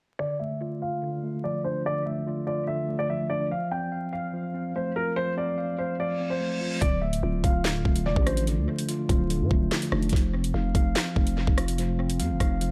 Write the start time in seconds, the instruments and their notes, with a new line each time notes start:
0.19 tine electric piano D3, grand piano D5
0.39 tine electric piano A3, grand piano E5
0.61 tine electric piano F4
0.82 tine electric piano F4, grand piano F5
1.02 tine electric piano D3
1.23 tine electric piano A3
1.44 tine electric piano F3, grand piano D5
1.64 tine electric piano D4, grand piano C5
1.85 tine electric piano D3, grand piano D5
2.06 tine electric piano A3, grand piano E5
2.27 tine electric piano F4
2.47 tine electric piano F4, grand piano D5
2.67 tine electric piano D3, grand piano E5
2.89 tine electric piano A3
2.99 grand piano D5
3.09 tine electric piano F3, grand piano E5
3.30 tine electric piano D4, grand piano D5
3.51 tine electric piano F3, grand piano F5
3.71 tine electric piano C4, grand piano G5
3.92 tine electric piano F5
4.13 grand piano F5, tine electric piano F5
4.33 tine electric piano F3
4.54 tine electric piano C4
4.75 tine electric piano A3, grand piano C5
4.96 tine electric piano F4, grand piano A#4
5.16 tine electric piano F3, grand piano C5
5.37 tine electric piano C4, grand piano D5
5.58 tine electric piano F5
5.78 grand piano C5, tine electric piano F5
5.99 tine electric piano F3, grand piano D5, reverse cymbal
6.20 tine electric piano C4
6.30 grand piano C5
6.40 tine electric piano A3
6.61 tine electric piano F4
6.81 808-style bass D1, tine electric piano D3, grand piano D5, kick, closed hi-hat
7.01 tine electric piano A3, grand piano E5
7.13 closed hi-hat
7.23 808-style bass D1, tine electric piano F4
7.44 808-style bass D1, tine electric piano F4, grand piano F5, kick, closed hi-hat
7.65 tine electric piano D3, snare, clap
7.85 808-style bass D1, tine electric piano A3, kick
7.96 closed hi-hat
8.06 808-style bass F1, tine electric piano F3, grand piano D5
8.16 808-style bass A1, kick
8.26 tine electric piano D4, grand piano C5, cross-stick, closed hi-hat
8.37 closed hi-hat
8.47 tine electric piano D3, closed hi-hat
8.58 808-style bass D2
8.68 tine electric piano A3
8.79 closed hi-hat
8.89 tine electric piano F4, closed hi-hat
9.09 808-style bass D1, tine electric piano F4, kick, closed hi-hat
9.30 tine electric piano D3, closed hi-hat
9.40 808-style bass A2
9.51 808-style bass D1, tine electric piano A3, kick
9.71 tine electric piano F3, snare, clap
9.82 closed hi-hat
9.92 808-style bass F1, tine electric piano D4, cross-stick
10.03 closed hi-hat
10.09 808-style bass F1, tine electric piano F3, kick, closed hi-hat
10.16 closed hi-hat
10.33 tine electric piano C4
10.44 closed hi-hat
10.54 808-style bass F1, tine electric piano F5
10.75 808-style bass F1, tine electric piano F5, kick, closed hi-hat
10.96 tine electric piano F3, snare, clap
11.16 808-style bass F1, tine electric piano C4, kick
11.27 closed hi-hat
11.37 tine electric piano A3
11.47 808-style bass F1, kick
11.58 tine electric piano F4, cross-stick, closed hi-hat
11.68 closed hi-hat
11.78 tine electric piano F3, closed hi-hat
11.99 tine electric piano C4
12.10 closed hi-hat
12.20 808-style bass F2, tine electric piano F5, closed hi-hat
12.30 808-style bass F1
12.40 808-style bass F1, tine electric piano F5, kick, cross-stick, closed hi-hat
12.61 tine electric piano F3, closed hi-hat